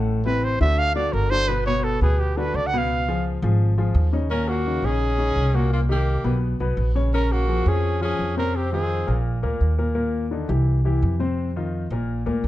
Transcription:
0.00 0.55 A1 medium
0.00 0.19 A2 medium
0.00 0.19 A3 medium
0.00 0.20 A4 medium
0.25 0.54 C3 medium
0.25 0.55 C4 medium
0.25 0.55 E4 medium
0.25 0.46 B4 loud
0.44 0.60 C5 loud
0.61 1.10 D2 medium
0.61 0.90 D3 medium
0.61 0.90 D4 medium
0.61 0.90 F#4 medium
0.61 0.80 E5 loud
0.79 0.95 F5 loud
0.95 1.25 D3 medium
0.95 1.25 D4 medium
0.95 1.25 F#4 medium
0.95 1.14 D5 loud
1.13 1.96 G1 medium
1.13 1.32 A#4 loud
1.30 1.46 D3 medium
1.30 1.46 D4 medium
1.30 1.46 F#4 medium
1.30 1.50 C5 loud
1.48 1.63 B2 medium
1.48 1.63 B3 medium
1.48 1.66 B4 loud
1.48 1.63 B4 medium
1.66 1.95 B2 medium
1.66 1.96 B3 medium
1.66 1.96 B4 medium
1.66 1.86 C#5 loud
1.84 2.02 A4 loud
2.01 2.50 D2 medium
2.01 2.31 B2 medium
2.01 2.31 B3 medium
2.01 2.21 G#4 medium
2.01 2.31 B4 medium
2.20 2.39 G4 medium
2.37 2.66 D3 medium
2.37 2.66 D4 medium
2.37 2.66 F#4 medium
2.37 2.57 B4 loud
2.54 3.36 C#2 medium
2.54 2.68 D5 loud
2.67 2.79 F#5 loud
2.73 3.02 B2 medium
2.73 3.02 B3 medium
2.73 3.02 B4 medium
2.78 3.31 F5 loud
3.08 3.37 F3 medium
3.08 3.37 F4 medium
3.08 3.37 G#4 medium
3.42 3.91 G#1 loud
3.42 3.71 F3 medium
3.42 3.72 F4 medium
3.42 3.72 G#4 medium
3.78 4.06 F3 medium
3.78 4.07 F4 medium
3.78 4.07 G#4 medium
3.95 4.77 D#2 loud
4.13 4.27 C#3 medium
4.13 4.27 C#4 medium
4.13 4.28 D#4 medium
4.31 4.59 A#2 medium
4.31 4.60 A#3 medium
4.31 4.51 C#4 medium
4.31 4.50 A#4 medium
4.31 4.60 A#4 medium
4.48 4.87 A#3 medium
4.48 4.87 F#4 medium
4.66 4.81 C#3 medium
4.66 4.81 C#4 medium
4.66 4.81 D#4 medium
4.82 5.32 A#1 medium
4.82 5.13 C#3 medium
4.82 5.13 C#4 medium
4.82 5.57 C#4 medium
4.82 5.13 D#4 medium
4.82 5.57 G#4 loud
5.18 5.47 C#3 medium
5.18 5.48 C#4 medium
5.18 5.48 D#4 medium
5.36 6.19 C2 medium
5.54 5.83 A#2 medium
5.54 5.83 A#3 medium
5.54 5.73 A#3 medium
5.54 5.72 F#4 medium
5.54 5.83 A#4 medium
5.73 5.81 A#3 medium
5.73 5.81 F4 medium
5.89 6.18 D#3 medium
5.89 6.40 A#3 medium
5.89 6.18 D#4 medium
5.89 6.18 G4 medium
5.89 6.39 G4 medium
6.24 6.57 B1 medium
6.24 6.53 B2 medium
6.24 6.54 B3 medium
6.24 6.54 B4 medium
6.60 6.76 B1 medium
6.60 6.89 B2 medium
6.60 6.89 B3 medium
6.60 6.89 B4 medium
6.77 7.60 A#1 medium
6.95 7.10 C#3 medium
6.95 7.10 C#4 medium
6.95 7.10 C#5 medium
7.14 7.43 C#3 medium
7.14 7.43 C#4 medium
7.14 7.34 C#4 medium
7.14 7.33 A#4 medium
7.14 7.43 C#5 medium
7.32 7.69 A#3 medium
7.32 7.70 F#4 medium
7.48 7.63 F3 medium
7.48 7.63 F4 medium
7.48 7.63 G#4 medium
7.66 8.15 F2 medium
7.66 7.95 F3 medium
7.66 8.02 C#4 medium
7.66 7.95 F4 medium
7.66 7.96 G#4 medium
7.66 8.03 G#4 loud
8.01 8.30 F3 medium
8.01 8.35 C#4 medium
8.01 8.30 F4 medium
8.01 8.31 G#4 medium
8.01 8.36 G#4 medium
8.19 9.02 F2 medium
8.37 8.66 C3 medium
8.37 8.66 C4 medium
8.37 8.57 C#4 medium
8.37 8.58 A#4 medium
8.37 8.66 C5 medium
8.55 8.73 C4 medium
8.55 8.72 G4 medium
8.72 9.01 D#3 medium
8.72 9.23 C4 medium
8.72 9.02 D#4 medium
8.72 9.02 F4 medium
8.72 9.22 G#4 medium
9.07 9.41 A#1 medium
9.07 9.36 A#2 medium
9.07 9.37 A#3 medium
9.07 9.37 A#4 medium
9.43 9.60 D2 medium
9.43 9.72 A#2 medium
9.43 9.72 A#3 medium
9.43 9.72 A#4 medium
9.61 10.44 D#2 medium
9.78 9.93 A#2 medium
9.78 9.93 A#3 medium
9.78 9.93 A#4 medium
9.95 10.25 A#2 medium
9.95 10.24 A#3 medium
9.95 10.25 A#4 medium
10.31 10.46 D3 medium
10.31 10.46 D4 medium
10.31 10.47 D#4 medium
10.48 10.99 C2 medium
10.48 10.78 E3 medium
10.48 10.78 E4 medium
10.48 10.78 G4 medium
10.85 11.14 E3 medium
10.85 11.14 E4 medium
10.85 11.14 G4 medium
11.02 11.85 F2 medium
11.19 11.49 C3 medium
11.19 11.49 C4 medium
11.19 11.49 C5 medium
11.56 11.85 D#3 medium
11.56 11.85 D#4 medium
11.56 11.85 F4 medium
11.90 12.24 A#1 medium
11.90 12.21 A#2 medium
11.90 12.21 A#3 medium
11.90 12.21 A#4 medium
12.26 12.43 D2 medium
12.26 12.48 A#2 medium
12.26 12.48 A#3 medium
12.26 12.48 A#4 medium
12.44 12.48 D#2 medium

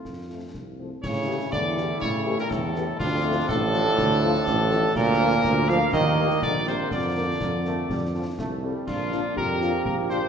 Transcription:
0.00 0.75 A3 soft
0.00 0.50 F4 soft
0.05 0.46 F2 soft
0.05 concert bass drum medium
0.05 snare soft
0.31 0.40 F3 soft
0.31 0.39 A3 soft
0.31 0.40 C4 soft
0.54 0.95 C2 soft
0.54 concert bass drum soft
0.54 snare soft
0.79 0.88 F3 soft
0.79 0.88 A3 soft
0.79 0.88 C4 soft
1.03 1.40 A2 medium
1.03 1.49 C#3 loud
1.03 2.96 G3 medium
1.03 2.96 E4 medium
1.03 1.49 C#5 loud
1.03 concert bass drum medium
1.03 snare medium
1.03 crash medium
1.28 1.37 E3 medium
1.28 1.37 A3 medium
1.28 1.37 G4 medium
1.52 1.93 E2 medium
1.52 2.03 D3 medium
1.52 1.98 D5 loud
1.52 concert bass drum medium
1.52 snare medium
1.77 1.86 E3 medium
1.77 1.86 A3 medium
1.77 1.86 G4 medium
1.77 snare medium
2.01 2.42 A2 medium
2.01 2.38 C#3 loud
2.01 2.35 C#5 loud
2.01 concert bass drum medium
2.01 snare medium
2.26 2.35 E3 medium
2.26 2.35 A3 medium
2.26 2.35 G4 medium
2.38 2.44 A#2 medium
2.38 2.50 A#4 loud
2.38 snare medium
2.50 2.91 E2 medium
2.50 3.01 A2 medium
2.50 3.00 A4 loud
2.50 concert bass drum medium
2.50 snare medium
2.75 2.84 E3 medium
2.75 2.85 A3 medium
2.75 2.84 G4 medium
2.75 snare medium
2.99 3.40 D2 medium
2.99 3.47 F2 loud
2.99 4.95 F3 loud
2.99 4.92 D4 medium
2.99 3.45 F4 loud
2.99 concert bass drum medium
2.99 snare medium
2.99 crash soft
3.24 3.33 F3 medium
3.24 3.33 A3 medium
3.24 3.33 F4 medium
3.48 3.89 A1 loud
3.48 4.91 A2 loud
3.48 4.92 A4 loud
3.48 concert bass drum medium
3.48 snare medium
3.73 3.82 F3 medium
3.73 3.83 A3 medium
3.73 3.83 F4 medium
3.73 snare medium
3.98 4.38 D2 loud
3.98 concert bass drum medium
3.98 snare medium
4.22 4.31 F3 medium
4.22 4.31 A3 medium
4.22 4.31 F4 medium
4.35 snare medium
4.46 4.87 A1 loud
4.46 concert bass drum medium
4.46 snare medium
4.71 4.80 F3 medium
4.71 4.80 A3 medium
4.71 4.80 F4 medium
4.71 snare medium
4.95 5.36 D2 loud
4.95 5.65 A#2 loud
4.95 5.90 F3 loud
4.95 6.91 A#3 loud
4.95 5.69 A#4 loud
4.95 concert bass drum medium
4.95 snare medium
4.95 crash soft
5.20 5.29 F3 medium
5.20 5.29 A#3 medium
5.20 5.29 F4 medium
5.44 5.85 D2 loud
5.44 concert bass drum medium
5.44 snare medium
5.69 5.80 F3 loud
5.69 5.78 F3 medium
5.69 5.78 A#3 medium
5.69 5.78 F4 medium
5.69 5.94 F5 loud
5.69 snare medium
5.93 6.34 D#2 medium
5.93 6.39 D#3 loud
5.93 6.92 G3 loud
5.93 6.39 D#5 loud
5.93 concert bass drum medium
5.93 snare medium
6.18 6.27 G3 medium
6.18 6.27 A#3 medium
6.18 6.27 A#4 medium
6.30 snare medium
6.42 6.83 A#1 medium
6.42 6.53 D3 medium
6.42 6.65 D5 loud
6.42 concert bass drum medium
6.42 snare medium
6.67 6.92 C3 medium
6.67 6.76 G3 medium
6.67 6.76 A#3 medium
6.67 6.76 A#4 medium
6.67 6.90 C5 loud
6.67 snare medium
6.91 7.32 F2 medium
6.91 8.38 D3 medium
6.91 7.36 F3 medium
6.91 7.33 A#3 medium
6.91 8.35 D5 loud
6.91 concert bass drum medium
6.91 snare medium
6.91 crash soft
7.17 7.26 F3 medium
7.17 7.26 A#3 medium
7.17 7.25 A#4 medium
7.40 7.81 F2 medium
7.40 7.51 A#3 medium
7.40 concert bass drum medium
7.40 snare medium
7.65 7.74 F3 medium
7.65 7.88 A3 medium
7.65 7.75 A#3 soft
7.65 7.75 A#4 medium
7.65 snare medium
7.89 8.30 F2 medium
7.89 8.01 G3 medium
7.89 concert bass drum medium
7.89 snare medium
8.14 8.25 F3 medium
8.14 8.24 F3 medium
8.14 8.24 C4 medium
8.14 8.24 A4 medium
8.38 8.75 C2 medium
8.38 8.61 A3 medium
8.38 concert bass drum medium
8.38 snare medium
8.63 8.72 F3 medium
8.63 8.88 G3 medium
8.63 8.72 C4 medium
8.63 8.72 A4 medium
8.86 9.28 A#1 medium
8.86 10.29 F3 medium
8.86 10.29 A#3 medium
8.86 9.33 D4 medium
8.86 9.33 F4 loud
8.86 concert bass drum medium
8.86 crash medium
9.12 9.21 F3 medium
9.12 9.21 D4 medium
9.12 9.21 F4 medium
9.12 snare medium
9.36 9.77 F2 medium
9.36 10.29 G4 loud
9.36 9.82 A#4 loud
9.36 concert bass drum medium
9.61 9.71 F3 medium
9.61 9.70 D4 medium
9.61 9.71 F4 medium
9.61 snare medium
9.85 10.26 A#1 medium
9.85 9.96 A#4 medium
9.85 concert bass drum medium
10.10 10.19 F3 medium
10.10 10.19 D4 medium
10.10 10.19 F4 medium
10.10 10.29 C5 loud
10.10 snare medium

